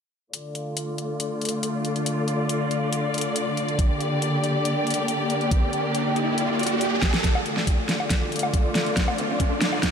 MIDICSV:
0, 0, Header, 1, 4, 480
1, 0, Start_track
1, 0, Key_signature, -1, "minor"
1, 0, Tempo, 431655
1, 373, Time_signature, 4, 2, 24, 8
1, 11021, End_track
2, 0, Start_track
2, 0, Title_t, "String section"
2, 0, Program_c, 0, 48
2, 372, Note_on_c, 0, 50, 76
2, 372, Note_on_c, 0, 57, 70
2, 372, Note_on_c, 0, 65, 68
2, 372, Note_on_c, 0, 74, 82
2, 4174, Note_off_c, 0, 57, 0
2, 4174, Note_off_c, 0, 65, 0
2, 4213, Note_on_c, 0, 58, 72
2, 4213, Note_on_c, 0, 67, 70
2, 8008, Note_off_c, 0, 50, 0
2, 8008, Note_off_c, 0, 74, 0
2, 8014, Note_off_c, 0, 58, 0
2, 8014, Note_off_c, 0, 67, 0
2, 8052, Note_on_c, 0, 57, 72
2, 8052, Note_on_c, 0, 65, 72
2, 8052, Note_on_c, 0, 74, 86
2, 8053, Note_on_c, 0, 50, 77
2, 11021, Note_off_c, 0, 50, 0
2, 11021, Note_off_c, 0, 57, 0
2, 11021, Note_off_c, 0, 65, 0
2, 11021, Note_off_c, 0, 74, 0
2, 11021, End_track
3, 0, Start_track
3, 0, Title_t, "Riser"
3, 0, Program_c, 1, 103
3, 4212, Note_on_c, 1, 60, 73
3, 8051, Note_off_c, 1, 60, 0
3, 8051, Note_on_c, 1, 60, 80
3, 11021, Note_off_c, 1, 60, 0
3, 11021, End_track
4, 0, Start_track
4, 0, Title_t, "Drums"
4, 372, Note_on_c, 9, 42, 76
4, 484, Note_off_c, 9, 42, 0
4, 612, Note_on_c, 9, 42, 49
4, 723, Note_off_c, 9, 42, 0
4, 853, Note_on_c, 9, 42, 77
4, 964, Note_off_c, 9, 42, 0
4, 1093, Note_on_c, 9, 42, 52
4, 1204, Note_off_c, 9, 42, 0
4, 1333, Note_on_c, 9, 42, 76
4, 1444, Note_off_c, 9, 42, 0
4, 1573, Note_on_c, 9, 42, 50
4, 1614, Note_off_c, 9, 42, 0
4, 1614, Note_on_c, 9, 42, 64
4, 1653, Note_off_c, 9, 42, 0
4, 1653, Note_on_c, 9, 42, 80
4, 1764, Note_off_c, 9, 42, 0
4, 1813, Note_on_c, 9, 42, 76
4, 1924, Note_off_c, 9, 42, 0
4, 2053, Note_on_c, 9, 42, 50
4, 2164, Note_off_c, 9, 42, 0
4, 2178, Note_on_c, 9, 42, 36
4, 2289, Note_off_c, 9, 42, 0
4, 2293, Note_on_c, 9, 42, 79
4, 2404, Note_off_c, 9, 42, 0
4, 2532, Note_on_c, 9, 42, 52
4, 2644, Note_off_c, 9, 42, 0
4, 2773, Note_on_c, 9, 42, 78
4, 2884, Note_off_c, 9, 42, 0
4, 3013, Note_on_c, 9, 42, 52
4, 3124, Note_off_c, 9, 42, 0
4, 3253, Note_on_c, 9, 42, 80
4, 3364, Note_off_c, 9, 42, 0
4, 3493, Note_on_c, 9, 42, 49
4, 3535, Note_off_c, 9, 42, 0
4, 3535, Note_on_c, 9, 42, 66
4, 3574, Note_off_c, 9, 42, 0
4, 3574, Note_on_c, 9, 42, 83
4, 3685, Note_off_c, 9, 42, 0
4, 3733, Note_on_c, 9, 42, 80
4, 3844, Note_off_c, 9, 42, 0
4, 3973, Note_on_c, 9, 42, 52
4, 4084, Note_off_c, 9, 42, 0
4, 4097, Note_on_c, 9, 42, 38
4, 4209, Note_off_c, 9, 42, 0
4, 4212, Note_on_c, 9, 36, 117
4, 4213, Note_on_c, 9, 42, 76
4, 4323, Note_off_c, 9, 36, 0
4, 4324, Note_off_c, 9, 42, 0
4, 4453, Note_on_c, 9, 42, 50
4, 4565, Note_off_c, 9, 42, 0
4, 4693, Note_on_c, 9, 42, 72
4, 4805, Note_off_c, 9, 42, 0
4, 4933, Note_on_c, 9, 42, 51
4, 5044, Note_off_c, 9, 42, 0
4, 5173, Note_on_c, 9, 42, 78
4, 5284, Note_off_c, 9, 42, 0
4, 5413, Note_on_c, 9, 42, 48
4, 5454, Note_off_c, 9, 42, 0
4, 5454, Note_on_c, 9, 42, 63
4, 5492, Note_off_c, 9, 42, 0
4, 5492, Note_on_c, 9, 42, 78
4, 5603, Note_off_c, 9, 42, 0
4, 5652, Note_on_c, 9, 42, 76
4, 5763, Note_off_c, 9, 42, 0
4, 5892, Note_on_c, 9, 42, 53
4, 6003, Note_off_c, 9, 42, 0
4, 6016, Note_on_c, 9, 42, 36
4, 6128, Note_off_c, 9, 42, 0
4, 6131, Note_on_c, 9, 36, 113
4, 6132, Note_on_c, 9, 42, 77
4, 6242, Note_off_c, 9, 36, 0
4, 6243, Note_off_c, 9, 42, 0
4, 6372, Note_on_c, 9, 42, 49
4, 6483, Note_off_c, 9, 42, 0
4, 6612, Note_on_c, 9, 42, 71
4, 6723, Note_off_c, 9, 42, 0
4, 6852, Note_on_c, 9, 42, 50
4, 6963, Note_off_c, 9, 42, 0
4, 7092, Note_on_c, 9, 42, 77
4, 7203, Note_off_c, 9, 42, 0
4, 7332, Note_on_c, 9, 42, 48
4, 7374, Note_off_c, 9, 42, 0
4, 7374, Note_on_c, 9, 42, 64
4, 7412, Note_off_c, 9, 42, 0
4, 7412, Note_on_c, 9, 42, 75
4, 7523, Note_off_c, 9, 42, 0
4, 7572, Note_on_c, 9, 42, 76
4, 7683, Note_off_c, 9, 42, 0
4, 7811, Note_on_c, 9, 36, 106
4, 7811, Note_on_c, 9, 38, 60
4, 7811, Note_on_c, 9, 42, 51
4, 7922, Note_off_c, 9, 36, 0
4, 7923, Note_off_c, 9, 38, 0
4, 7923, Note_off_c, 9, 42, 0
4, 7936, Note_on_c, 9, 38, 70
4, 7936, Note_on_c, 9, 42, 35
4, 8048, Note_off_c, 9, 38, 0
4, 8048, Note_off_c, 9, 42, 0
4, 8051, Note_on_c, 9, 36, 94
4, 8052, Note_on_c, 9, 38, 46
4, 8052, Note_on_c, 9, 42, 79
4, 8162, Note_off_c, 9, 36, 0
4, 8163, Note_off_c, 9, 38, 0
4, 8163, Note_off_c, 9, 42, 0
4, 8176, Note_on_c, 9, 77, 74
4, 8287, Note_off_c, 9, 77, 0
4, 8292, Note_on_c, 9, 42, 51
4, 8403, Note_off_c, 9, 42, 0
4, 8416, Note_on_c, 9, 38, 42
4, 8528, Note_off_c, 9, 38, 0
4, 8531, Note_on_c, 9, 36, 97
4, 8532, Note_on_c, 9, 42, 76
4, 8642, Note_off_c, 9, 36, 0
4, 8643, Note_off_c, 9, 42, 0
4, 8772, Note_on_c, 9, 38, 52
4, 8772, Note_on_c, 9, 42, 55
4, 8883, Note_off_c, 9, 38, 0
4, 8883, Note_off_c, 9, 42, 0
4, 8896, Note_on_c, 9, 77, 50
4, 9007, Note_off_c, 9, 77, 0
4, 9011, Note_on_c, 9, 36, 100
4, 9012, Note_on_c, 9, 38, 53
4, 9012, Note_on_c, 9, 42, 83
4, 9122, Note_off_c, 9, 36, 0
4, 9123, Note_off_c, 9, 38, 0
4, 9123, Note_off_c, 9, 42, 0
4, 9252, Note_on_c, 9, 42, 50
4, 9293, Note_off_c, 9, 42, 0
4, 9293, Note_on_c, 9, 42, 69
4, 9332, Note_off_c, 9, 42, 0
4, 9332, Note_on_c, 9, 42, 84
4, 9376, Note_on_c, 9, 77, 71
4, 9443, Note_off_c, 9, 42, 0
4, 9487, Note_off_c, 9, 77, 0
4, 9491, Note_on_c, 9, 36, 99
4, 9492, Note_on_c, 9, 42, 79
4, 9602, Note_off_c, 9, 36, 0
4, 9603, Note_off_c, 9, 42, 0
4, 9732, Note_on_c, 9, 38, 57
4, 9732, Note_on_c, 9, 42, 55
4, 9843, Note_off_c, 9, 38, 0
4, 9843, Note_off_c, 9, 42, 0
4, 9857, Note_on_c, 9, 42, 37
4, 9968, Note_off_c, 9, 42, 0
4, 9971, Note_on_c, 9, 36, 96
4, 9972, Note_on_c, 9, 38, 58
4, 9972, Note_on_c, 9, 42, 79
4, 10082, Note_off_c, 9, 36, 0
4, 10083, Note_off_c, 9, 38, 0
4, 10083, Note_off_c, 9, 42, 0
4, 10097, Note_on_c, 9, 77, 74
4, 10208, Note_off_c, 9, 77, 0
4, 10212, Note_on_c, 9, 42, 53
4, 10323, Note_off_c, 9, 42, 0
4, 10451, Note_on_c, 9, 36, 101
4, 10452, Note_on_c, 9, 42, 80
4, 10562, Note_off_c, 9, 36, 0
4, 10563, Note_off_c, 9, 42, 0
4, 10691, Note_on_c, 9, 38, 66
4, 10691, Note_on_c, 9, 42, 55
4, 10802, Note_off_c, 9, 38, 0
4, 10802, Note_off_c, 9, 42, 0
4, 10816, Note_on_c, 9, 77, 50
4, 10927, Note_off_c, 9, 77, 0
4, 10931, Note_on_c, 9, 36, 103
4, 10931, Note_on_c, 9, 38, 68
4, 10931, Note_on_c, 9, 42, 82
4, 11021, Note_off_c, 9, 36, 0
4, 11021, Note_off_c, 9, 38, 0
4, 11021, Note_off_c, 9, 42, 0
4, 11021, End_track
0, 0, End_of_file